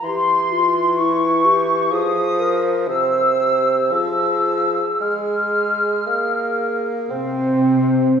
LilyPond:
<<
  \new Staff \with { instrumentName = "Flute section" } { \time 4/4 \key f \minor \tempo 4 = 58 c'''4 des'''4 ees'''4 e'''4 | e'''4 f'''2 c''4 | }
  \new Staff \with { instrumentName = "Clarinet" } { \time 4/4 \key f \minor g'8 f'8 e'8 g'8 aes'8 bes'8 c''4 | aes'2. c'4 | }
  \new Staff \with { instrumentName = "French horn section" } { \time 4/4 \key f \minor r1 | r2. c'4 | }
  \new Staff \with { instrumentName = "Bassoon" } { \clef bass \time 4/4 \key f \minor e2 f4 c4 | f4 aes4 bes4 c'4 | }
  \new Staff \with { instrumentName = "Cello section" } { \clef bass \time 4/4 \key f \minor r1 | r2. c4 | }
>>